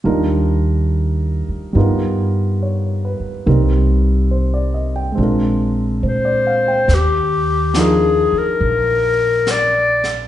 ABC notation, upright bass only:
X:1
M:4/4
L:1/8
Q:"Swing" 1/4=70
K:Eb
V:1 name="Upright bass" clef=bass
E,,3 z G,,3 z | C,,4 B,,,2 B,,2 | E,,3 z B,,,4 |]